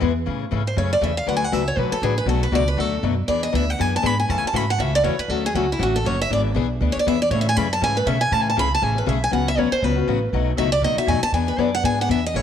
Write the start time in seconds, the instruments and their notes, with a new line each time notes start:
0.00 upright bass E2, steel-string acoustic guitar E3 G#3 B3 E4 G#4
0.26 upright bass A2, steel-string acoustic guitar C#3 E3 A3 C#4 G#4
0.51 upright bass G#2, steel-string acoustic guitar C#3 E3 A3 C#4 G#4
0.67 steel-string acoustic guitar C5
0.76 upright bass F#2, steel-string acoustic guitar C#3 E3 A3 C#4 G#4 C#5
0.93 steel-string acoustic guitar D5
1.01 upright bass E2, steel-string acoustic guitar C#3 E3 A3 C#4 G#4 E5
1.17 steel-string acoustic guitar F5
1.27 upright bass D2, steel-string acoustic guitar D3 F#3 A3 D4 F#4 B4 F#5
1.37 steel-string acoustic guitar G#5
1.44 steel-string acoustic guitar F#5
1.52 upright bass C#2, steel-string acoustic guitar D3 F#3 A3 D4 F#4 B4 E5
1.68 steel-string acoustic guitar C#5
1.77 upright bass B1, steel-string acoustic guitar D3 F#3 A3 D4 F#4 B4
1.91 steel-string acoustic guitar A4, muted upright bass stroke
2.02 upright bass A1, steel-string acoustic guitar D3 F#3 A3 D4 F#4 G#4 B4
2.18 steel-string acoustic guitar B4
2.26 upright bass B1, steel-string acoustic guitar B2 F#3 A3 D4 F#4 A4
2.43 steel-string acoustic guitar B4
2.52 upright bass C#2, steel-string acoustic guitar B2 F#3 A3 D4 F#4 D5
2.68 steel-string acoustic guitar B4
2.77 upright bass D2, steel-string acoustic guitar B2 F#3 A3 D4 F#4 A4
3.03 upright bass F#2, steel-string acoustic guitar B2 F#3 A3 D4 F#4
3.28 upright bass E2, steel-string acoustic guitar E3 B3 D4 G#4 D5
3.43 steel-string acoustic guitar D#5
3.52 upright bass D2, steel-string acoustic guitar E3 B3 D4 G#4 E5
3.70 steel-string acoustic guitar F#5
3.78 upright bass F#2, steel-string acoustic guitar E3 B3 D4 G#4 G#5
3.96 steel-string acoustic guitar A5
4.02 upright bass G#2, steel-string acoustic guitar E3 B3 D4 G#4 B5
4.20 steel-string acoustic guitar G#5
4.28 upright bass F#2, steel-string acoustic guitar C#3 E3 A3 C#4 F#4 A5
4.38 steel-string acoustic guitar G#5
4.44 steel-string acoustic guitar A5, muted upright bass stroke
4.53 upright bass G#2, steel-string acoustic guitar C#3 E3 A3 C#4 F#4 B5
4.70 steel-string acoustic guitar F#5
4.79 upright bass C#2, steel-string acoustic guitar C#3 E3 A3 C#4 F#4 E5
4.95 steel-string acoustic guitar D5
5.03 upright bass E2, steel-string acoustic guitar C#3 E3 A3 C#4 F#4 C#5
5.18 steel-string acoustic guitar B4, muted upright bass stroke
5.28 upright bass D2, steel-string acoustic guitar D3 F#3 A3 C#4 F#4 A4
5.46 steel-string acoustic guitar G#4
5.54 upright bass C#2, steel-string acoustic guitar D3 F#3 A3 C#4 F#4
5.72 steel-string acoustic guitar E4
5.79 upright bass A1, steel-string acoustic guitar D3 F#3 A3 C#4 F#4
5.96 steel-string acoustic guitar A4
6.05 upright bass F#1, steel-string acoustic guitar D3 F#3 A3 C#4 F#4 C#5
6.21 steel-string acoustic guitar E5
6.30 upright bass G#1, steel-string acoustic guitar E3 B3 D4 G#4 D5
6.55 upright bass B1, steel-string acoustic guitar E3 B3 D4 G#4
6.81 upright bass D2, steel-string acoustic guitar E3 B3 D4 G#4
6.92 steel-string acoustic guitar C#5, muted upright bass stroke
6.99 steel-string acoustic guitar D5
7.06 upright bass E2, steel-string acoustic guitar E3 B3 D4 G#4 E5
7.22 steel-string acoustic guitar D5
7.30 upright bass A2, steel-string acoustic guitar C#3 E3 A3 C#4 G#4 C#5
7.41 steel-string acoustic guitar E5
7.49 steel-string acoustic guitar G#5
7.57 upright bass F#2, steel-string acoustic guitar C#3 E3 A3 C#4 G#4 B5
7.73 steel-string acoustic guitar A5
7.81 upright bass G#2, steel-string acoustic guitar C#3 E3 A3 C#4 G#4 G#5
7.97 steel-string acoustic guitar B4
8.06 upright bass B2, steel-string acoustic guitar C#3 E3 A3 C#4 G#4 E5
8.21 steel-string acoustic guitar G#5
8.31 upright bass A2, steel-string acoustic guitar C#3 E3 A3 C#4 G#4 A5
8.42 steel-string acoustic guitar G#5
8.50 steel-string acoustic guitar A5
8.56 upright bass C#2, steel-string acoustic guitar C#3 E3 A3 C#4 G#4 B5
8.75 steel-string acoustic guitar A5
8.82 upright bass A1, steel-string acoustic guitar C#3 E3 A3 C#4 G#4 G#5
8.95 steel-string acoustic guitar A3 C#4 G#4 B4
9.06 upright bass B1, steel-string acoustic guitar C#3 E3 A3 C#4 G#4 E5
9.24 steel-string acoustic guitar G#5
9.31 upright bass C#2, steel-string acoustic guitar C#3 F#3 B3 C#4 F#4 F#5
9.48 steel-string acoustic guitar E5
9.57 upright bass D2, steel-string acoustic guitar C#3 F#3 B3 C#4 F#4 C#5
9.71 steel-string acoustic guitar C5, muted upright bass stroke
9.82 upright bass C#2, steel-string acoustic guitar C#3 F#3 B3 C#4 F#4 B4
9.96 steel-string acoustic guitar B3 C#4 F#4
10.07 upright bass A1, steel-string acoustic guitar C#3 F#3 B3 C#4 F#4
10.33 upright bass B1, steel-string acoustic guitar B2 F#3 A3 D#4 F#4
10.57 upright bass C#2, steel-string acoustic guitar B2 F#3 A3 D#4 F#4 E5
10.72 steel-string acoustic guitar D5
10.82 upright bass D#2, steel-string acoustic guitar B2 F#3 A3 D#4 F#4 D#5
10.96 steel-string acoustic guitar A3 D#4 F#4 E5, muted upright bass stroke
11.07 upright bass F2, steel-string acoustic guitar B2 F#3 A3 D#4 F#4 G#5
11.22 steel-string acoustic guitar A5, muted upright bass stroke
11.32 upright bass E2, steel-string acoustic guitar E3 B3 D4 G#4 G#5
11.48 steel-string acoustic guitar B4
11.57 upright bass F#2, steel-string acoustic guitar E3 B3 D4 G#4 D5
11.75 steel-string acoustic guitar F#5
11.83 upright bass G#2, steel-string acoustic guitar E3 B3 D4 G#4 G#5
11.98 steel-string acoustic guitar B3 D4 G#4 F#5
12.09 upright bass E2, steel-string acoustic guitar E3 B3 D4 G#4 E5
12.26 steel-string acoustic guitar D#5
12.34 upright bass A1, steel-string acoustic guitar C#3 E3 A3 C#4 G#4 C#5